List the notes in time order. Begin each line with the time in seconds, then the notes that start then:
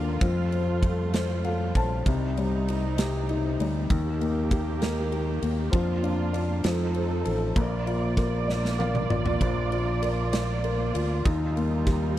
Already playing: D#2 D3 A#3 D4 F4
0.21 F2 F3 G3 A3, kick, ride
0.52 C4, ride
0.83 A4, kick, ride
1.13 C5, snare, ride
1.44 A4 F5, ride
1.75 A#1 C4 A5, kick, ride
2.06 C2 C3 D#4, kick, ride
2.37 G3, ride
2.68 D#4, ride
2.98 G4, snare, ride
3.29 D#4, ride
3.60 D2 G3, ride
3.90 D#2 D#3 A#3 G4, kick, ride
4.20 A#3, ride
4.51 G4, kick, ride
4.82 A#4, snare, ride
5.12 G4, ride
5.42 D#2 A#3, ride
5.71 F2 F3 A#3 D4 F4, kick, ride
6.03 D4, ride
6.33 D5, ride
6.63 F2 F3 D#4 A4, snare, ride
6.94 C4, ride
7.25 A1 A4, ride
7.55 A#1 A#3 F4 D5, kick, ride
7.86 F4, ride
8.17 A#4, kick, snare, ride
8.48 D5, snare
8.65 snare
8.79 A#4 F5, high tom
8.95 mid tom
9.09 A1 F4 D5, mid tom
9.26 floor tom
9.41 A#1 F3, kick, ride
9.71 F4, ride
10.02 A#4, ride
10.33 D5, snare, ride
10.64 A#4, ride
10.93 D2 F4, ride
11.24 D#2 G3 D#4, kick, ride
11.56 A#3, ride
11.86 G4, kick, snare, ride